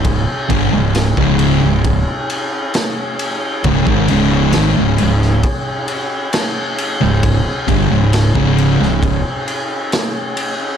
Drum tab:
RD |x-x-x-x-x-x-x-x-|x-x-x-x-x-x-x-x-|x-x-x-x-x-x-x-x-|
SD |----o-------o---|----o--o----o---|----o--o----o---|
BD |o-o--o--o-------|oo------o-------|o-o--o--o-------|